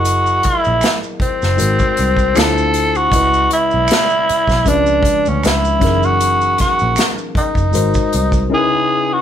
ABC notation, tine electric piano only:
X:1
M:4/4
L:1/8
Q:"Swing 16ths" 1/4=78
K:C#dor
V:1 name="Tine electric piano"
[F,EGAd]4 [G,DFA^B]2 [=D,=DE=F=c]2 | [C,G,EBd]4 [C,^E,G,=DB]3 [=E,F,C^DGA]- | [E,F,CDGA]4 [G,DFA^B]2 [C,CDEA=B]2 |]